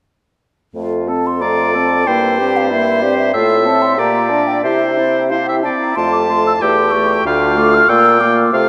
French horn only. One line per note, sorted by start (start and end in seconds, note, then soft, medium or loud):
0.75 1.10 A3 soft
1.08 1.43 C4 soft
1.42 1.77 A3 soft
1.75 2.07 C4 soft
2.08 2.42 A#3 soft
2.40 2.74 C4 soft
2.72 3.05 A#3 soft
3.03 3.35 C4 soft
3.35 3.68 A3 soft
3.67 3.98 C4 soft
3.99 4.33 A#3 soft
4.31 4.64 D4 soft
4.65 5.00 E4 soft
4.98 5.33 C4 soft
5.31 5.66 E4 soft
5.64 5.96 C4 soft
5.97 6.29 A3 soft
6.30 6.62 A3 soft
6.62 6.93 A3 soft
6.94 7.25 A3 soft
7.26 7.57 A3 soft
7.58 7.89 A3 medium
7.89 8.20 A#3 medium
8.21 8.52 A#3 soft
8.54 8.69 A3 medium